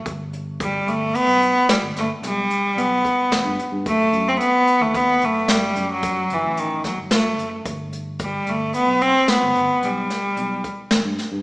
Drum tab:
HH |xxxxxxxxxxxxxx|xxxxxxxxxxxxxx|xxxxxxxxxxxxxx|
SD |------ooo---o-|------o----oo-|------o--o--oo|
BD |o-o--------o--|o---o---o--o--|o-o--------o--|